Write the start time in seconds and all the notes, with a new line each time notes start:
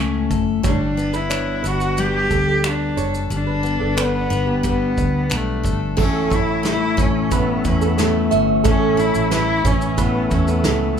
Already playing: A2 A3 C#4 E4 A4
0.00 C#2
0.31 F#1 A4, kick, shaker
0.63 G1 G3 D4 C#5, kick, shaker
0.97 B3, shaker
1.13 E4 B4, finger snap, shaker
1.30 D4 C#5, finger snap, shaker
1.63 G1 D4 B4, shaker
1.67 F#4
1.81 shaker
1.97 G3 G4, shaker
2.30 D2 A4, kick, shaker
2.64 D4, finger snap, shaker
2.68 D4
2.97 F#1 A4 C#5, shaker
3.15 shaker
3.30 G1 G3 D4, shaker
3.47 B4
3.63 B3, shaker
3.80 G1 A4
3.97 D4 B4, finger snap, shaker
4.02 B3
4.30 G1 D4, shaker
4.46 G4
4.63 G3, kick, shaker
4.69 B3
4.98 D2, kick, shaker
5.30 B1 D4, finger snap, shaker
5.36 A3
5.63 G1 A4, kick, shaker
5.97 A1 A2 A4 E5 C#6 E6, kick, crash
6.01 C#4
6.30 E4 C#5, kick, shaker
6.36 E4
6.63 A3 B4, snare, shaker
6.68 E4
6.97 A1 C#4 C#5, kick, shaker
7.01 C#4
7.31 A2 B3 B4, kick, shaker
7.65 E2 C#4 E4, kick, shaker
7.81 B3 A4, shaker
7.98 A3 C#5, snare, shaker
8.31 G1 C#4 E5, shaker
8.64 A1 A2 C#4 A4, kick, shaker
8.97 E4 C#5, shaker
9.15 A1, shaker
9.31 A3 E4 B4, snare, shaker
9.64 A1 C#4 C#5, kick, shaker
9.81 shaker
9.98 A2 B3 B4, kick, shaker
10.31 E2 C#4 E4, kick, shaker
10.47 B3 A4, shaker
10.64 C#2 A3, snare, shaker